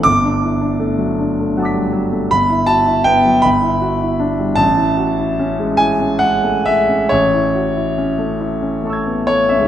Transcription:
grand piano
0.03 G1 D6
0.24 D4
0.43 E4
0.61 D4
0.80 A3
0.98 F#3
1.19 D4
1.40 A3
1.57 F#3 F#5 A5
1.62 D6 B6
1.74 G3
1.92 F#3
2.12 A3
2.31 G1 B5
2.49 E4
2.67 F#4 A5
2.86 E4
3.04 B3 G5
3.25 F#3
3.42 G1 B5
3.62 E4
3.81 F#4
4.01 E4
4.20 D4
4.39 G3
4.55 A1 A5
4.77 E4
4.97 F#4
5.19 E4
5.39 C#4
5.59 G#3
5.77 E4 G#5
6.00 C#4
6.19 G#3 F#5
6.43 A3
6.66 G#3 E5
6.88 C#4
7.09 A1 C#5
7.34 E4
7.55 F#4
7.76 E4
7.98 C#4
8.18 A3
8.40 E4
8.62 C#4
8.83 A3 A5 C#6
8.90 E6 G#6
9.07 B3
9.27 A3 C#5
9.49 C#4 E5
9.56 C#2 G#3
9.63 D#4

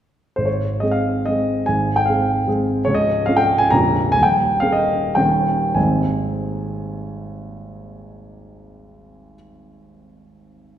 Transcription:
grand piano
0.36 G#1 G#2 C5
0.45 C#5
0.80 G#3 C4 G#4 D#5
0.91 F5
1.26 G#3 C4 G#4 D#5
1.66 G#1 G#2 G#5
1.96 G5
2.06 G#3 C4 G#4 F5
2.48 G#3 C4 G#4
2.85 C#1 C#2 C#5
2.95 D#5
3.26 G#3 C#4 F4 F5
3.37 G5
3.58 G#5
3.70 A#0 A#1 A#3 C#4 F4 A#5
4.12 D#1 D#2 G#5
4.23 G5
4.60 A#3 C#4 G#4 F5
4.72 D#5
5.15 D#1 D#2 A#3 C#4 A#4 G5
5.75 G#1 D#2 G#3 C4 D#4 G#4 G#5

